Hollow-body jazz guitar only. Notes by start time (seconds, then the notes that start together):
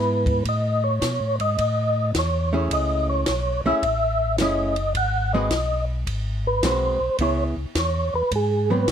Already playing: B3 E4 G#4
2.53 A3 C#4 E4 G#4
3.66 A3 C#4 E4 G#4
4.41 A3 C#4 E4 G#4
5.34 G#3 C4 F#4 B4
6.64 G#3 C4 F#4 B4
7.21 B3 E4 G#4
8.70 F#3 B3 C4